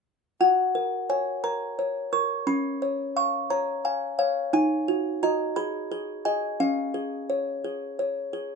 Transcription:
0, 0, Header, 1, 2, 480
1, 0, Start_track
1, 0, Key_signature, 6, "major"
1, 0, Tempo, 689655
1, 284, Time_signature, 6, 3, 24, 8
1, 5952, End_track
2, 0, Start_track
2, 0, Title_t, "Music box"
2, 0, Program_c, 0, 10
2, 283, Note_on_c, 0, 66, 49
2, 283, Note_on_c, 0, 78, 73
2, 522, Note_on_c, 0, 70, 42
2, 745, Note_off_c, 0, 78, 0
2, 763, Note_on_c, 0, 73, 44
2, 764, Note_on_c, 0, 80, 74
2, 908, Note_off_c, 0, 70, 0
2, 995, Note_off_c, 0, 80, 0
2, 1000, Note_on_c, 0, 82, 79
2, 1001, Note_on_c, 0, 70, 44
2, 1147, Note_off_c, 0, 73, 0
2, 1244, Note_on_c, 0, 73, 39
2, 1386, Note_off_c, 0, 70, 0
2, 1462, Note_off_c, 0, 82, 0
2, 1480, Note_on_c, 0, 70, 44
2, 1480, Note_on_c, 0, 85, 83
2, 1627, Note_off_c, 0, 73, 0
2, 1694, Note_off_c, 0, 66, 0
2, 1711, Note_off_c, 0, 85, 0
2, 1718, Note_on_c, 0, 61, 55
2, 1719, Note_on_c, 0, 83, 77
2, 1721, Note_off_c, 0, 70, 0
2, 1963, Note_on_c, 0, 73, 42
2, 2179, Note_off_c, 0, 83, 0
2, 2203, Note_on_c, 0, 77, 48
2, 2204, Note_on_c, 0, 85, 83
2, 2344, Note_off_c, 0, 73, 0
2, 2431, Note_off_c, 0, 85, 0
2, 2439, Note_on_c, 0, 73, 45
2, 2439, Note_on_c, 0, 82, 84
2, 2583, Note_off_c, 0, 77, 0
2, 2668, Note_off_c, 0, 82, 0
2, 2678, Note_on_c, 0, 77, 44
2, 2679, Note_on_c, 0, 80, 65
2, 2820, Note_off_c, 0, 73, 0
2, 2906, Note_off_c, 0, 77, 0
2, 2907, Note_off_c, 0, 80, 0
2, 2914, Note_on_c, 0, 77, 76
2, 2915, Note_on_c, 0, 73, 48
2, 3125, Note_off_c, 0, 61, 0
2, 3145, Note_off_c, 0, 77, 0
2, 3155, Note_off_c, 0, 73, 0
2, 3155, Note_on_c, 0, 63, 58
2, 3158, Note_on_c, 0, 80, 92
2, 3398, Note_on_c, 0, 66, 46
2, 3617, Note_off_c, 0, 80, 0
2, 3630, Note_off_c, 0, 66, 0
2, 3639, Note_on_c, 0, 66, 46
2, 3640, Note_on_c, 0, 82, 81
2, 3643, Note_on_c, 0, 75, 49
2, 3853, Note_off_c, 0, 63, 0
2, 3853, Note_off_c, 0, 66, 0
2, 3855, Note_off_c, 0, 75, 0
2, 3868, Note_off_c, 0, 82, 0
2, 3871, Note_on_c, 0, 83, 87
2, 3874, Note_on_c, 0, 68, 61
2, 4109, Note_off_c, 0, 68, 0
2, 4117, Note_on_c, 0, 68, 44
2, 4336, Note_off_c, 0, 83, 0
2, 4345, Note_off_c, 0, 68, 0
2, 4352, Note_on_c, 0, 80, 88
2, 4353, Note_on_c, 0, 68, 49
2, 4355, Note_on_c, 0, 75, 51
2, 4573, Note_off_c, 0, 68, 0
2, 4574, Note_off_c, 0, 75, 0
2, 4587, Note_off_c, 0, 80, 0
2, 4594, Note_on_c, 0, 61, 52
2, 4595, Note_on_c, 0, 77, 71
2, 4832, Note_on_c, 0, 68, 45
2, 5078, Note_on_c, 0, 73, 43
2, 5222, Note_off_c, 0, 68, 0
2, 5321, Note_on_c, 0, 68, 39
2, 5465, Note_off_c, 0, 73, 0
2, 5562, Note_on_c, 0, 73, 41
2, 5708, Note_off_c, 0, 68, 0
2, 5775, Note_off_c, 0, 77, 0
2, 5799, Note_on_c, 0, 68, 42
2, 5949, Note_off_c, 0, 73, 0
2, 5952, Note_off_c, 0, 61, 0
2, 5952, Note_off_c, 0, 68, 0
2, 5952, End_track
0, 0, End_of_file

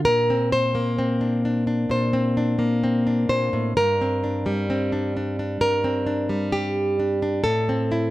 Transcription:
0, 0, Header, 1, 2, 480
1, 0, Start_track
1, 0, Key_signature, -2, "minor"
1, 0, Tempo, 927357
1, 24, Time_signature, 4, 2, 24, 8
1, 2424, Tempo, 914634
1, 4219, End_track
2, 0, Start_track
2, 0, Title_t, "Nylon-string guitar"
2, 0, Program_c, 0, 24
2, 0, Note_on_c, 0, 62, 56
2, 26, Note_on_c, 0, 70, 93
2, 35, Note_on_c, 0, 46, 58
2, 156, Note_on_c, 0, 60, 39
2, 171, Note_off_c, 0, 62, 0
2, 261, Note_off_c, 0, 70, 0
2, 271, Note_on_c, 0, 72, 87
2, 387, Note_on_c, 0, 58, 49
2, 505, Note_off_c, 0, 60, 0
2, 510, Note_on_c, 0, 60, 43
2, 625, Note_on_c, 0, 62, 37
2, 749, Note_off_c, 0, 62, 0
2, 751, Note_on_c, 0, 62, 38
2, 863, Note_off_c, 0, 62, 0
2, 865, Note_on_c, 0, 62, 36
2, 975, Note_off_c, 0, 46, 0
2, 980, Note_off_c, 0, 72, 0
2, 981, Note_on_c, 0, 46, 51
2, 989, Note_on_c, 0, 72, 72
2, 1098, Note_off_c, 0, 60, 0
2, 1104, Note_on_c, 0, 60, 41
2, 1219, Note_off_c, 0, 62, 0
2, 1227, Note_on_c, 0, 62, 34
2, 1333, Note_off_c, 0, 58, 0
2, 1339, Note_on_c, 0, 58, 52
2, 1461, Note_off_c, 0, 60, 0
2, 1468, Note_on_c, 0, 60, 35
2, 1581, Note_off_c, 0, 62, 0
2, 1588, Note_on_c, 0, 62, 42
2, 1697, Note_off_c, 0, 46, 0
2, 1698, Note_off_c, 0, 72, 0
2, 1703, Note_on_c, 0, 46, 48
2, 1705, Note_on_c, 0, 72, 80
2, 1824, Note_off_c, 0, 46, 0
2, 1828, Note_on_c, 0, 45, 54
2, 1917, Note_off_c, 0, 58, 0
2, 1945, Note_off_c, 0, 72, 0
2, 1946, Note_off_c, 0, 45, 0
2, 1949, Note_off_c, 0, 60, 0
2, 1951, Note_on_c, 0, 70, 84
2, 1954, Note_on_c, 0, 43, 53
2, 2078, Note_on_c, 0, 60, 33
2, 2187, Note_off_c, 0, 62, 0
2, 2193, Note_on_c, 0, 62, 43
2, 2308, Note_on_c, 0, 55, 52
2, 2426, Note_off_c, 0, 60, 0
2, 2433, Note_on_c, 0, 60, 44
2, 2544, Note_off_c, 0, 62, 0
2, 2550, Note_on_c, 0, 62, 34
2, 2669, Note_off_c, 0, 62, 0
2, 2678, Note_on_c, 0, 62, 36
2, 2790, Note_off_c, 0, 62, 0
2, 2796, Note_on_c, 0, 62, 40
2, 2903, Note_off_c, 0, 70, 0
2, 2904, Note_off_c, 0, 43, 0
2, 2909, Note_on_c, 0, 43, 52
2, 2911, Note_on_c, 0, 70, 76
2, 3026, Note_off_c, 0, 60, 0
2, 3032, Note_on_c, 0, 60, 41
2, 3143, Note_off_c, 0, 62, 0
2, 3149, Note_on_c, 0, 62, 39
2, 3263, Note_off_c, 0, 55, 0
2, 3269, Note_on_c, 0, 55, 49
2, 3388, Note_off_c, 0, 70, 0
2, 3390, Note_on_c, 0, 67, 74
2, 3629, Note_off_c, 0, 62, 0
2, 3637, Note_on_c, 0, 62, 40
2, 3751, Note_off_c, 0, 62, 0
2, 3758, Note_on_c, 0, 62, 44
2, 3867, Note_off_c, 0, 55, 0
2, 3867, Note_off_c, 0, 67, 0
2, 3869, Note_off_c, 0, 43, 0
2, 3869, Note_on_c, 0, 69, 73
2, 3872, Note_off_c, 0, 62, 0
2, 3876, Note_on_c, 0, 45, 60
2, 3988, Note_off_c, 0, 60, 0
2, 4002, Note_on_c, 0, 60, 38
2, 4121, Note_on_c, 0, 64, 41
2, 4219, Note_off_c, 0, 45, 0
2, 4219, Note_off_c, 0, 60, 0
2, 4219, Note_off_c, 0, 64, 0
2, 4219, Note_off_c, 0, 69, 0
2, 4219, End_track
0, 0, End_of_file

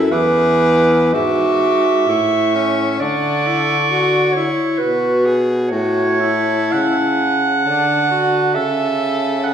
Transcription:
0, 0, Header, 1, 5, 480
1, 0, Start_track
1, 0, Key_signature, 3, "major"
1, 0, Tempo, 1022147
1, 48, Time_signature, 3, 2, 24, 8
1, 531, Tempo, 938967
1, 1011, Tempo, 907716
1, 2931, Tempo, 1013514
1, 3411, Tempo, 910470
1, 4900, End_track
2, 0, Start_track
2, 0, Title_t, "Soprano saxophone"
2, 0, Program_c, 0, 64
2, 0, Note_on_c, 0, 76, 85
2, 58, Note_on_c, 0, 86, 82
2, 65, Note_off_c, 0, 76, 0
2, 534, Note_off_c, 0, 86, 0
2, 537, Note_on_c, 0, 86, 80
2, 1026, Note_on_c, 0, 85, 80
2, 1034, Note_off_c, 0, 86, 0
2, 1507, Note_off_c, 0, 85, 0
2, 1511, Note_on_c, 0, 85, 87
2, 2773, Note_off_c, 0, 85, 0
2, 2925, Note_on_c, 0, 81, 82
2, 3878, Note_off_c, 0, 81, 0
2, 3902, Note_on_c, 0, 81, 80
2, 4369, Note_off_c, 0, 81, 0
2, 4380, Note_on_c, 0, 81, 83
2, 4900, Note_off_c, 0, 81, 0
2, 4900, End_track
3, 0, Start_track
3, 0, Title_t, "Clarinet"
3, 0, Program_c, 1, 71
3, 0, Note_on_c, 1, 69, 107
3, 54, Note_on_c, 1, 71, 116
3, 62, Note_off_c, 1, 69, 0
3, 535, Note_on_c, 1, 76, 115
3, 543, Note_off_c, 1, 71, 0
3, 1498, Note_off_c, 1, 76, 0
3, 1502, Note_on_c, 1, 74, 118
3, 2206, Note_on_c, 1, 73, 105
3, 2214, Note_off_c, 1, 74, 0
3, 2444, Note_on_c, 1, 71, 107
3, 2452, Note_off_c, 1, 73, 0
3, 2785, Note_off_c, 1, 71, 0
3, 2921, Note_on_c, 1, 73, 118
3, 3415, Note_on_c, 1, 78, 124
3, 3423, Note_off_c, 1, 73, 0
3, 4368, Note_off_c, 1, 78, 0
3, 4371, Note_on_c, 1, 76, 108
3, 4839, Note_off_c, 1, 76, 0
3, 4847, Note_on_c, 1, 78, 115
3, 4900, Note_off_c, 1, 78, 0
3, 4900, End_track
4, 0, Start_track
4, 0, Title_t, "Tenor saxophone"
4, 0, Program_c, 2, 66
4, 53, Note_on_c, 2, 68, 97
4, 524, Note_off_c, 2, 68, 0
4, 535, Note_on_c, 2, 66, 91
4, 1014, Note_on_c, 2, 64, 80
4, 1022, Note_off_c, 2, 66, 0
4, 1260, Note_off_c, 2, 64, 0
4, 1262, Note_on_c, 2, 61, 86
4, 1512, Note_on_c, 2, 62, 83
4, 1520, Note_off_c, 2, 61, 0
4, 1751, Note_on_c, 2, 64, 75
4, 1759, Note_off_c, 2, 62, 0
4, 1916, Note_off_c, 2, 64, 0
4, 1985, Note_on_c, 2, 66, 87
4, 2214, Note_off_c, 2, 66, 0
4, 2224, Note_on_c, 2, 64, 78
4, 2455, Note_on_c, 2, 66, 80
4, 2463, Note_off_c, 2, 64, 0
4, 2696, Note_on_c, 2, 68, 87
4, 2704, Note_off_c, 2, 66, 0
4, 2932, Note_off_c, 2, 68, 0
4, 2935, Note_on_c, 2, 66, 86
4, 3167, Note_on_c, 2, 64, 86
4, 3174, Note_off_c, 2, 66, 0
4, 3764, Note_off_c, 2, 64, 0
4, 3911, Note_on_c, 2, 62, 76
4, 4128, Note_off_c, 2, 62, 0
4, 4146, Note_on_c, 2, 66, 87
4, 4382, Note_on_c, 2, 69, 90
4, 4390, Note_off_c, 2, 66, 0
4, 4861, Note_on_c, 2, 68, 81
4, 4869, Note_off_c, 2, 69, 0
4, 4900, Note_off_c, 2, 68, 0
4, 4900, End_track
5, 0, Start_track
5, 0, Title_t, "Baritone saxophone"
5, 0, Program_c, 3, 67
5, 0, Note_on_c, 3, 42, 81
5, 47, Note_off_c, 3, 42, 0
5, 50, Note_on_c, 3, 40, 84
5, 536, Note_on_c, 3, 44, 73
5, 544, Note_off_c, 3, 40, 0
5, 1008, Note_off_c, 3, 44, 0
5, 1011, Note_on_c, 3, 45, 74
5, 1492, Note_off_c, 3, 45, 0
5, 1505, Note_on_c, 3, 50, 80
5, 2299, Note_off_c, 3, 50, 0
5, 2459, Note_on_c, 3, 47, 73
5, 2939, Note_on_c, 3, 45, 77
5, 2946, Note_off_c, 3, 47, 0
5, 3414, Note_off_c, 3, 45, 0
5, 3418, Note_on_c, 3, 49, 75
5, 3908, Note_on_c, 3, 50, 73
5, 3916, Note_off_c, 3, 49, 0
5, 4382, Note_on_c, 3, 49, 76
5, 4390, Note_off_c, 3, 50, 0
5, 4900, Note_off_c, 3, 49, 0
5, 4900, End_track
0, 0, End_of_file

